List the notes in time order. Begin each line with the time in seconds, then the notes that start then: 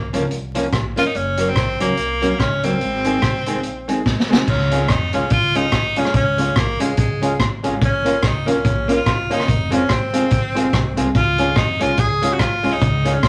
Already playing: A#3
0.13 C#2 F3 A#3 C#4 F4 A#4, closed hi-hat
0.31 C2, closed hi-hat
0.55 F3 A#3 C#4 F4 A#4, closed hi-hat
0.73 A#1, muted hollow-body jazz guitar stroke, kick, cross-stick, closed hi-hat
0.96 F1 F3 A#3 C#4 F4 A#4, closed hi-hat
1.07 D#4
1.15 F#1 C#4, closed hi-hat
1.37 F#3 A#3 C#4 F#4 A#4, closed hi-hat
1.49 C4
1.56 A#1 F#4 A#4, kick, cross-stick, closed hi-hat
1.80 C#2 F#3 A#3 C#4 F#4 A#4, closed hi-hat
1.97 C2, closed hi-hat
2.22 F#3 A#3 C#4 F#4 A#4, closed hi-hat
2.39 C#2 C#4, muted hollow-body jazz guitar stroke, kick, cross-stick, closed hi-hat
2.63 F#3 A#3 C4 C#4 F#4 A#4, closed hi-hat
2.81 G#1, closed hi-hat
3.04 D#3 G#3 C4 D#4 G#4, closed hi-hat
3.22 C2 D#4 G#4, kick, cross-stick, closed hi-hat
3.46 D#3 G#3 C4 D#4 G#4, closed hi-hat
3.63 A#1, closed hi-hat
3.88 D#3 G#3 C4 D#4 G#4, closed hi-hat
4.06 G#1, muted hollow-body jazz guitar stroke, kick, snare
4.20 snare
4.29 C2 D#3 G#3 C4 D#4 G#4, snare
4.48 C#2 C#4, kick, crash
4.71 G#3 C#4 F4 G#4, closed hi-hat
4.88 F2 D#4, kick, cross-stick, closed hi-hat
5.13 C2 G#3 C#4 F4 G#4, closed hi-hat
5.30 C#2 F4, kick, closed hi-hat
5.55 G#3 C#4 D#4 F4 G#4, closed hi-hat
5.72 A#1 F4 G#4, muted hollow-body jazz guitar stroke, kick, cross-stick, closed hi-hat
5.96 C2 G#3 C#4 F4 G#4, closed hi-hat
6.05 cross-stick
6.14 C#2 C#4, kick, closed hi-hat
6.38 G#3 C#4 F4 G#4, closed hi-hat
6.56 A#1 A#3, kick, cross-stick, closed hi-hat
6.79 C2 G#3 C#4 F4 G#4, closed hi-hat
6.97 C#2 G#3, kick, closed hi-hat
7.21 G#3 C#4 F4 G#4, closed hi-hat
7.39 G#1, muted hollow-body jazz guitar stroke, kick, cross-stick, closed hi-hat
7.63 G#1 G#3 C#4 F4 G#4, closed hi-hat
7.82 A#1 C#4, kick, closed hi-hat
8.05 A#3 C#4 F4 A#4, closed hi-hat
8.23 C#2, kick, cross-stick, closed hi-hat
8.27 D#4
8.46 C2 A#3 C#4 F4 A#4, closed hi-hat
8.65 A#1, kick, closed hi-hat
8.88 A#3 C#4 F4 A#4, closed hi-hat
8.93 F4
9.06 C2 F4 A#4, muted hollow-body jazz guitar stroke, kick, cross-stick, closed hi-hat
9.30 F#1 A#3 C#4 D#4 F4 A#4, closed hi-hat
9.40 cross-stick
9.48 F1, kick, closed hi-hat
9.71 G#3 C4 C#4 F4 G#4, closed hi-hat
9.89 G#1 C4, kick, cross-stick, closed hi-hat
10.13 G#3 C4 F4 G#4, closed hi-hat
10.31 A#1, kick, closed hi-hat
10.55 G#3 C4 F4 G#4, closed hi-hat
10.73 C2 F4 G#4, kick, cross-stick, closed hi-hat
10.96 C2 G#3 C4 F4 G#4, closed hi-hat
11.15 C#2 F4, kick, closed hi-hat
11.38 G#3 C#4 F4 G#4, closed hi-hat
11.56 F2 D#4, kick, cross-stick, closed hi-hat
11.80 C2 G#3 C#4 F4 G#4, closed hi-hat
11.97 C#2 G#4, kick, closed hi-hat
12.22 G#3 C#4 F4 G#4, closed hi-hat
12.33 F#4
12.39 A#1 F4 G#4, muted hollow-body jazz guitar stroke, kick, cross-stick, closed hi-hat
12.63 C2 G#3 C#4 F4 G#4, open hi-hat
12.72 D#4
12.82 C#2, kick, closed hi-hat
13.05 G#3 C#4 F4 G#4, closed hi-hat
13.14 C#4
13.23 D#2, kick, cross-stick, closed hi-hat